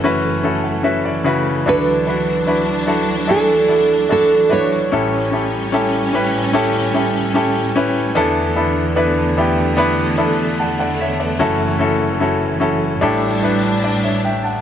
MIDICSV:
0, 0, Header, 1, 4, 480
1, 0, Start_track
1, 0, Key_signature, 2, "major"
1, 0, Tempo, 810811
1, 989, Time_signature, 4, 2, 24, 8
1, 8651, End_track
2, 0, Start_track
2, 0, Title_t, "Nylon-string guitar"
2, 0, Program_c, 0, 24
2, 1000, Note_on_c, 0, 71, 67
2, 1955, Note_off_c, 0, 71, 0
2, 1957, Note_on_c, 0, 69, 67
2, 2433, Note_off_c, 0, 69, 0
2, 2440, Note_on_c, 0, 69, 72
2, 2678, Note_off_c, 0, 69, 0
2, 2680, Note_on_c, 0, 73, 73
2, 3131, Note_off_c, 0, 73, 0
2, 8651, End_track
3, 0, Start_track
3, 0, Title_t, "Grand piano"
3, 0, Program_c, 1, 0
3, 0, Control_c, 1, 64, 127
3, 0, Note_on_c, 1, 30, 55
3, 0, Note_on_c, 1, 42, 54
3, 0, Note_on_c, 1, 61, 63
3, 0, Note_on_c, 1, 64, 57
3, 0, Note_on_c, 1, 66, 56
3, 0, Note_on_c, 1, 69, 66
3, 0, Note_on_c, 1, 71, 64
3, 22, Note_off_c, 1, 61, 0
3, 22, Note_on_c, 1, 61, 77
3, 25, Note_off_c, 1, 64, 0
3, 25, Note_off_c, 1, 66, 0
3, 25, Note_on_c, 1, 64, 67
3, 25, Note_on_c, 1, 66, 71
3, 30, Note_off_c, 1, 71, 0
3, 30, Note_on_c, 1, 71, 87
3, 247, Note_off_c, 1, 61, 0
3, 250, Note_off_c, 1, 64, 0
3, 253, Note_off_c, 1, 66, 0
3, 256, Note_on_c, 1, 61, 58
3, 257, Note_off_c, 1, 71, 0
3, 259, Note_on_c, 1, 64, 53
3, 262, Note_on_c, 1, 66, 52
3, 262, Note_on_c, 1, 81, 45
3, 264, Note_off_c, 1, 69, 0
3, 264, Note_on_c, 1, 69, 67
3, 377, Note_off_c, 1, 81, 0
3, 378, Note_on_c, 1, 78, 47
3, 484, Note_off_c, 1, 61, 0
3, 487, Note_off_c, 1, 64, 0
3, 488, Note_off_c, 1, 66, 0
3, 493, Note_on_c, 1, 61, 64
3, 494, Note_off_c, 1, 69, 0
3, 494, Note_off_c, 1, 78, 0
3, 496, Note_on_c, 1, 64, 59
3, 497, Note_on_c, 1, 66, 59
3, 499, Note_on_c, 1, 76, 55
3, 500, Note_on_c, 1, 71, 69
3, 615, Note_off_c, 1, 76, 0
3, 623, Note_on_c, 1, 74, 53
3, 729, Note_off_c, 1, 61, 0
3, 730, Note_off_c, 1, 64, 0
3, 731, Note_off_c, 1, 66, 0
3, 732, Note_off_c, 1, 71, 0
3, 735, Note_on_c, 1, 49, 67
3, 741, Note_on_c, 1, 64, 62
3, 743, Note_on_c, 1, 66, 65
3, 745, Note_on_c, 1, 71, 73
3, 961, Note_off_c, 1, 30, 0
3, 961, Note_off_c, 1, 42, 0
3, 962, Note_off_c, 1, 74, 0
3, 970, Note_off_c, 1, 49, 0
3, 973, Note_off_c, 1, 64, 0
3, 974, Note_off_c, 1, 66, 0
3, 975, Note_off_c, 1, 71, 0
3, 983, Note_on_c, 1, 62, 73
3, 984, Note_on_c, 1, 64, 66
3, 986, Note_on_c, 1, 38, 48
3, 990, Note_on_c, 1, 50, 45
3, 991, Note_on_c, 1, 66, 63
3, 992, Note_on_c, 1, 69, 78
3, 996, Control_c, 1, 64, 0
3, 1085, Control_c, 1, 64, 127
3, 1214, Note_off_c, 1, 62, 0
3, 1214, Note_off_c, 1, 64, 0
3, 1218, Note_off_c, 1, 66, 0
3, 1218, Note_off_c, 1, 69, 0
3, 1224, Note_on_c, 1, 62, 51
3, 1226, Note_on_c, 1, 64, 46
3, 1231, Note_on_c, 1, 71, 59
3, 1232, Note_on_c, 1, 66, 48
3, 1452, Note_off_c, 1, 62, 0
3, 1452, Note_off_c, 1, 64, 0
3, 1458, Note_off_c, 1, 66, 0
3, 1458, Note_off_c, 1, 71, 0
3, 1461, Note_on_c, 1, 62, 53
3, 1461, Note_on_c, 1, 64, 54
3, 1467, Note_on_c, 1, 66, 53
3, 1468, Note_on_c, 1, 71, 60
3, 1688, Note_off_c, 1, 62, 0
3, 1690, Note_off_c, 1, 64, 0
3, 1691, Note_off_c, 1, 66, 0
3, 1696, Note_off_c, 1, 71, 0
3, 1697, Note_on_c, 1, 62, 59
3, 1699, Note_on_c, 1, 64, 56
3, 1700, Note_on_c, 1, 66, 54
3, 1704, Note_on_c, 1, 69, 70
3, 1931, Note_off_c, 1, 62, 0
3, 1932, Note_off_c, 1, 64, 0
3, 1932, Note_off_c, 1, 66, 0
3, 1934, Note_off_c, 1, 69, 0
3, 1940, Note_on_c, 1, 62, 68
3, 1942, Note_on_c, 1, 64, 62
3, 1944, Note_on_c, 1, 66, 58
3, 1948, Note_on_c, 1, 69, 78
3, 2172, Note_off_c, 1, 62, 0
3, 2173, Note_off_c, 1, 64, 0
3, 2174, Note_off_c, 1, 66, 0
3, 2176, Note_off_c, 1, 69, 0
3, 2182, Note_on_c, 1, 62, 50
3, 2183, Note_on_c, 1, 64, 45
3, 2185, Note_on_c, 1, 66, 42
3, 2187, Note_on_c, 1, 69, 55
3, 2413, Note_off_c, 1, 62, 0
3, 2414, Note_off_c, 1, 64, 0
3, 2415, Note_off_c, 1, 66, 0
3, 2416, Note_off_c, 1, 69, 0
3, 2423, Note_on_c, 1, 62, 58
3, 2428, Note_on_c, 1, 64, 51
3, 2428, Note_on_c, 1, 66, 51
3, 2429, Note_on_c, 1, 69, 65
3, 2653, Note_off_c, 1, 62, 0
3, 2654, Note_off_c, 1, 64, 0
3, 2656, Note_off_c, 1, 66, 0
3, 2657, Note_off_c, 1, 69, 0
3, 2661, Note_on_c, 1, 62, 64
3, 2662, Note_on_c, 1, 64, 58
3, 2667, Note_on_c, 1, 66, 56
3, 2667, Note_on_c, 1, 71, 70
3, 2884, Note_off_c, 1, 38, 0
3, 2885, Note_off_c, 1, 50, 0
3, 2893, Note_off_c, 1, 62, 0
3, 2894, Note_off_c, 1, 64, 0
3, 2896, Note_off_c, 1, 66, 0
3, 2896, Note_off_c, 1, 71, 0
3, 2912, Note_on_c, 1, 33, 45
3, 2912, Note_on_c, 1, 45, 49
3, 2912, Note_on_c, 1, 61, 76
3, 2913, Note_on_c, 1, 64, 62
3, 2915, Note_on_c, 1, 67, 60
3, 2917, Control_c, 1, 64, 0
3, 2919, Note_on_c, 1, 69, 74
3, 3009, Control_c, 1, 64, 127
3, 3137, Note_off_c, 1, 61, 0
3, 3139, Note_off_c, 1, 64, 0
3, 3140, Note_off_c, 1, 67, 0
3, 3142, Note_off_c, 1, 69, 0
3, 3146, Note_on_c, 1, 61, 51
3, 3152, Note_on_c, 1, 64, 48
3, 3156, Note_on_c, 1, 67, 50
3, 3156, Note_on_c, 1, 69, 57
3, 3375, Note_off_c, 1, 61, 0
3, 3378, Note_off_c, 1, 64, 0
3, 3380, Note_off_c, 1, 67, 0
3, 3380, Note_off_c, 1, 69, 0
3, 3387, Note_on_c, 1, 61, 73
3, 3391, Note_on_c, 1, 64, 65
3, 3396, Note_on_c, 1, 67, 62
3, 3397, Note_on_c, 1, 69, 76
3, 3616, Note_off_c, 1, 61, 0
3, 3618, Note_off_c, 1, 64, 0
3, 3620, Note_off_c, 1, 67, 0
3, 3621, Note_off_c, 1, 69, 0
3, 3630, Note_on_c, 1, 61, 66
3, 3635, Note_on_c, 1, 64, 56
3, 3637, Note_on_c, 1, 67, 58
3, 3641, Note_on_c, 1, 71, 74
3, 3857, Note_off_c, 1, 61, 0
3, 3858, Note_off_c, 1, 64, 0
3, 3861, Note_off_c, 1, 67, 0
3, 3863, Note_off_c, 1, 71, 0
3, 3867, Note_on_c, 1, 64, 76
3, 3868, Note_on_c, 1, 61, 83
3, 3875, Note_on_c, 1, 67, 79
3, 3875, Note_on_c, 1, 69, 91
3, 4096, Note_off_c, 1, 61, 0
3, 4096, Note_off_c, 1, 64, 0
3, 4100, Note_off_c, 1, 67, 0
3, 4100, Note_off_c, 1, 69, 0
3, 4108, Note_on_c, 1, 61, 62
3, 4111, Note_on_c, 1, 64, 63
3, 4113, Note_on_c, 1, 67, 54
3, 4118, Note_on_c, 1, 69, 66
3, 4336, Note_off_c, 1, 61, 0
3, 4338, Note_off_c, 1, 64, 0
3, 4339, Note_off_c, 1, 67, 0
3, 4341, Note_off_c, 1, 69, 0
3, 4346, Note_on_c, 1, 61, 70
3, 4348, Note_on_c, 1, 64, 65
3, 4352, Note_on_c, 1, 67, 68
3, 4355, Note_on_c, 1, 69, 81
3, 4576, Note_off_c, 1, 61, 0
3, 4576, Note_off_c, 1, 64, 0
3, 4578, Note_off_c, 1, 67, 0
3, 4580, Note_off_c, 1, 69, 0
3, 4592, Note_on_c, 1, 61, 77
3, 4594, Note_on_c, 1, 64, 64
3, 4596, Note_on_c, 1, 67, 65
3, 4598, Note_on_c, 1, 71, 81
3, 4806, Note_off_c, 1, 45, 0
3, 4807, Note_off_c, 1, 33, 0
3, 4818, Note_off_c, 1, 61, 0
3, 4819, Note_off_c, 1, 64, 0
3, 4820, Note_off_c, 1, 67, 0
3, 4821, Note_off_c, 1, 71, 0
3, 4826, Note_on_c, 1, 59, 82
3, 4826, Note_on_c, 1, 62, 80
3, 4829, Note_on_c, 1, 52, 59
3, 4830, Note_on_c, 1, 40, 58
3, 4831, Note_on_c, 1, 64, 81
3, 4833, Note_on_c, 1, 69, 104
3, 4837, Control_c, 1, 64, 0
3, 4952, Control_c, 1, 64, 127
3, 5055, Note_off_c, 1, 59, 0
3, 5056, Note_off_c, 1, 62, 0
3, 5058, Note_off_c, 1, 64, 0
3, 5059, Note_off_c, 1, 69, 0
3, 5067, Note_on_c, 1, 59, 62
3, 5068, Note_on_c, 1, 62, 57
3, 5072, Note_on_c, 1, 64, 60
3, 5073, Note_on_c, 1, 69, 72
3, 5293, Note_off_c, 1, 59, 0
3, 5296, Note_off_c, 1, 62, 0
3, 5298, Note_off_c, 1, 64, 0
3, 5299, Note_off_c, 1, 69, 0
3, 5302, Note_on_c, 1, 59, 68
3, 5306, Note_on_c, 1, 62, 67
3, 5309, Note_on_c, 1, 64, 68
3, 5309, Note_on_c, 1, 71, 80
3, 5533, Note_off_c, 1, 59, 0
3, 5535, Note_off_c, 1, 62, 0
3, 5537, Note_off_c, 1, 64, 0
3, 5537, Note_off_c, 1, 71, 0
3, 5546, Note_on_c, 1, 59, 69
3, 5551, Note_on_c, 1, 62, 58
3, 5553, Note_on_c, 1, 64, 59
3, 5555, Note_on_c, 1, 67, 77
3, 5773, Note_off_c, 1, 59, 0
3, 5776, Note_off_c, 1, 62, 0
3, 5778, Note_off_c, 1, 64, 0
3, 5780, Note_off_c, 1, 67, 0
3, 5782, Note_on_c, 1, 59, 92
3, 5785, Note_on_c, 1, 62, 76
3, 5787, Note_on_c, 1, 64, 77
3, 5792, Note_on_c, 1, 71, 91
3, 6013, Note_off_c, 1, 59, 0
3, 6015, Note_off_c, 1, 62, 0
3, 6016, Note_off_c, 1, 64, 0
3, 6018, Note_off_c, 1, 71, 0
3, 6025, Note_on_c, 1, 59, 63
3, 6026, Note_on_c, 1, 62, 62
3, 6028, Note_on_c, 1, 64, 58
3, 6029, Note_on_c, 1, 69, 73
3, 6255, Note_off_c, 1, 59, 0
3, 6255, Note_off_c, 1, 62, 0
3, 6256, Note_off_c, 1, 64, 0
3, 6257, Note_off_c, 1, 69, 0
3, 6270, Note_on_c, 1, 81, 54
3, 6276, Note_on_c, 1, 78, 41
3, 6381, Note_off_c, 1, 78, 0
3, 6383, Note_off_c, 1, 81, 0
3, 6390, Note_on_c, 1, 78, 53
3, 6395, Note_on_c, 1, 74, 43
3, 6503, Note_off_c, 1, 78, 0
3, 6506, Note_off_c, 1, 74, 0
3, 6516, Note_on_c, 1, 76, 57
3, 6519, Note_on_c, 1, 73, 51
3, 6626, Note_off_c, 1, 76, 0
3, 6628, Note_off_c, 1, 73, 0
3, 6631, Note_on_c, 1, 74, 47
3, 6635, Note_on_c, 1, 71, 38
3, 6725, Note_off_c, 1, 40, 0
3, 6725, Note_off_c, 1, 52, 0
3, 6744, Note_on_c, 1, 61, 81
3, 6747, Note_on_c, 1, 30, 58
3, 6748, Note_on_c, 1, 42, 59
3, 6748, Note_on_c, 1, 64, 81
3, 6749, Note_on_c, 1, 66, 83
3, 6752, Note_on_c, 1, 69, 96
3, 6757, Control_c, 1, 64, 0
3, 6852, Control_c, 1, 64, 127
3, 6858, Note_off_c, 1, 74, 0
3, 6860, Note_off_c, 1, 71, 0
3, 6972, Note_off_c, 1, 61, 0
3, 6976, Note_off_c, 1, 64, 0
3, 6977, Note_off_c, 1, 66, 0
3, 6978, Note_off_c, 1, 69, 0
3, 6981, Note_on_c, 1, 61, 66
3, 6985, Note_on_c, 1, 64, 57
3, 6987, Note_on_c, 1, 66, 61
3, 6989, Note_on_c, 1, 69, 77
3, 7213, Note_off_c, 1, 61, 0
3, 7214, Note_off_c, 1, 64, 0
3, 7216, Note_off_c, 1, 66, 0
3, 7217, Note_off_c, 1, 69, 0
3, 7223, Note_on_c, 1, 64, 63
3, 7224, Note_on_c, 1, 61, 67
3, 7230, Note_on_c, 1, 66, 62
3, 7231, Note_on_c, 1, 69, 72
3, 7450, Note_off_c, 1, 61, 0
3, 7452, Note_off_c, 1, 64, 0
3, 7452, Note_off_c, 1, 66, 0
3, 7458, Note_off_c, 1, 69, 0
3, 7459, Note_on_c, 1, 61, 67
3, 7460, Note_on_c, 1, 64, 59
3, 7461, Note_on_c, 1, 66, 59
3, 7467, Note_on_c, 1, 69, 70
3, 7684, Note_off_c, 1, 30, 0
3, 7685, Note_off_c, 1, 42, 0
3, 7692, Note_off_c, 1, 61, 0
3, 7693, Note_off_c, 1, 64, 0
3, 7693, Note_off_c, 1, 66, 0
3, 7696, Note_off_c, 1, 69, 0
3, 7703, Note_on_c, 1, 62, 86
3, 7707, Note_on_c, 1, 45, 52
3, 7707, Note_on_c, 1, 64, 70
3, 7709, Note_on_c, 1, 33, 53
3, 7711, Note_on_c, 1, 67, 72
3, 7712, Note_on_c, 1, 69, 87
3, 7715, Control_c, 1, 64, 0
3, 7823, Control_c, 1, 64, 127
3, 7934, Note_off_c, 1, 62, 0
3, 7936, Note_off_c, 1, 64, 0
3, 7938, Note_off_c, 1, 67, 0
3, 7939, Note_off_c, 1, 69, 0
3, 7947, Note_on_c, 1, 62, 59
3, 7948, Note_on_c, 1, 64, 59
3, 7953, Note_on_c, 1, 67, 57
3, 7955, Note_on_c, 1, 71, 67
3, 8176, Note_off_c, 1, 62, 0
3, 8176, Note_off_c, 1, 64, 0
3, 8179, Note_off_c, 1, 67, 0
3, 8180, Note_off_c, 1, 71, 0
3, 8194, Note_on_c, 1, 74, 49
3, 8197, Note_on_c, 1, 71, 40
3, 8305, Note_off_c, 1, 74, 0
3, 8307, Note_off_c, 1, 71, 0
3, 8311, Note_on_c, 1, 76, 53
3, 8316, Note_on_c, 1, 73, 42
3, 8424, Note_off_c, 1, 76, 0
3, 8426, Note_off_c, 1, 73, 0
3, 8433, Note_on_c, 1, 79, 53
3, 8437, Note_on_c, 1, 76, 50
3, 8545, Note_off_c, 1, 79, 0
3, 8547, Note_off_c, 1, 76, 0
3, 8549, Note_on_c, 1, 81, 46
3, 8553, Note_on_c, 1, 78, 40
3, 8644, Note_off_c, 1, 45, 0
3, 8645, Note_off_c, 1, 33, 0
3, 8651, Note_off_c, 1, 78, 0
3, 8651, Note_off_c, 1, 81, 0
3, 8651, End_track
4, 0, Start_track
4, 0, Title_t, "String section"
4, 0, Program_c, 2, 48
4, 0, Note_on_c, 2, 42, 60
4, 0, Note_on_c, 2, 52, 52
4, 0, Note_on_c, 2, 57, 67
4, 962, Note_off_c, 2, 57, 0
4, 977, Note_off_c, 2, 42, 0
4, 998, Note_on_c, 2, 54, 52
4, 1000, Note_on_c, 2, 62, 65
4, 2892, Note_off_c, 2, 52, 0
4, 2894, Note_off_c, 2, 54, 0
4, 2895, Note_off_c, 2, 62, 0
4, 2906, Note_on_c, 2, 55, 53
4, 2907, Note_on_c, 2, 45, 62
4, 2909, Note_on_c, 2, 61, 72
4, 4808, Note_off_c, 2, 55, 0
4, 4809, Note_off_c, 2, 45, 0
4, 4810, Note_off_c, 2, 61, 0
4, 4828, Note_on_c, 2, 40, 64
4, 4830, Note_on_c, 2, 57, 66
4, 4832, Note_on_c, 2, 50, 62
4, 6729, Note_off_c, 2, 40, 0
4, 6731, Note_off_c, 2, 50, 0
4, 6743, Note_on_c, 2, 52, 54
4, 6744, Note_on_c, 2, 42, 59
4, 7686, Note_off_c, 2, 57, 0
4, 7696, Note_off_c, 2, 52, 0
4, 7697, Note_off_c, 2, 42, 0
4, 7697, Note_on_c, 2, 62, 73
4, 7698, Note_on_c, 2, 45, 62
4, 7701, Note_on_c, 2, 55, 57
4, 8651, Note_off_c, 2, 45, 0
4, 8651, Note_off_c, 2, 55, 0
4, 8651, Note_off_c, 2, 62, 0
4, 8651, End_track
0, 0, End_of_file